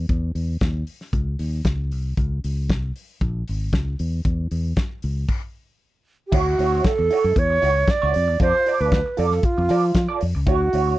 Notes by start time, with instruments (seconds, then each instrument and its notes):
0.09 fingered electric bass E2, kick, closed hi-hat
0.35 fingered electric bass E2, open hi-hat
0.61 fingered electric bass D#2, kick, snare, closed hi-hat
0.87 open hi-hat
1.01 snare
1.13 fingered electric bass C#2, kick, closed hi-hat
1.39 fingered electric bass D#2, open hi-hat
1.65 fingered electric bass C#2, kick, snare, closed hi-hat
1.91 fingered electric bass C2, open hi-hat
2.17 fingered electric bass C#2, kick, closed hi-hat
2.44 fingered electric bass C#2, open hi-hat
2.70 fingered electric bass C2, kick, snare, closed hi-hat
2.96 open hi-hat
3.21 fingered electric bass A#1, kick, closed hi-hat
3.48 fingered electric bass G#1, open hi-hat
3.73 fingered electric bass C#2, kick, snare, closed hi-hat
3.99 fingered electric bass E2, open hi-hat
4.25 fingered electric bass E2, kick, closed hi-hat
4.51 fingered electric bass E2, open hi-hat
4.76 kick, snare, closed hi-hat
5.02 fingered electric bass C#2, open hi-hat
5.28 kick, crash
6.27 alto flute G4
6.32 fingered electric bass D2, clean electric guitar E4 F#4 C#5, alto flute F#4, kick, crash
6.46 muted clean electric guitar stroke
6.58 fingered electric bass D2, clean electric guitar E4 F#4 C#5, open hi-hat
6.72 clean electric guitar E4 F#4 C#5
6.84 alto flute A4, kick, snare, closed hi-hat
6.98 fingered electric bass E2, muted clean electric guitar stroke
7.11 clean electric guitar E4 F#4 C#5, open hi-hat
7.24 fingered electric bass F#2, muted clean electric guitar stroke
7.36 fingered electric bass E2, alto flute C#5, kick, closed hi-hat
7.50 muted clean electric guitar stroke
7.62 fingered electric bass C#2, clean electric guitar E4 F#4 C#5, open hi-hat
7.75 muted clean electric guitar stroke
7.88 alto flute D5, muted clean electric guitar stroke, kick, snare, closed hi-hat
8.02 fingered electric bass C#2, clean electric guitar E4 F#4 C#5
8.14 fingered electric bass F2, muted clean electric guitar stroke, open hi-hat
8.28 fingered electric bass E2, muted clean electric guitar stroke
8.40 fingered electric bass F2, clean electric guitar F4 A4 D5, alto flute C5, kick, closed hi-hat
8.53 muted clean electric guitar stroke
8.66 clean electric guitar F4 A4 D5, open hi-hat
8.80 fingered electric bass D2, clean electric guitar F4 A4 D5, alto flute B4
8.92 kick, snare, closed hi-hat
9.06 muted clean electric guitar stroke
9.17 fingered electric bass F2, clean electric guitar F4 A4 D5, alto flute A4, open hi-hat
9.31 muted clean electric guitar stroke, snare
9.43 alto flute F4, kick, closed hi-hat
9.58 fingered electric bass F2, muted clean electric guitar stroke
9.69 fingered electric bass F3, clean electric guitar F4 A4 D5, open hi-hat
9.83 muted clean electric guitar stroke
9.95 fingered electric bass F3, muted clean electric guitar stroke, kick, snare, closed hi-hat
10.09 clean electric guitar F4 A4 D5
10.21 fingered electric bass F2, muted clean electric guitar stroke, open hi-hat
10.35 fingered electric bass C#2, muted clean electric guitar stroke
10.46 fingered electric bass D2, clean electric guitar E4 F#4 C#5, alto flute F#4, kick, closed hi-hat
10.61 muted clean electric guitar stroke
10.73 fingered electric bass D2, clean electric guitar E4 F#4 C#5, open hi-hat
10.87 clean electric guitar E4 F#4 C#5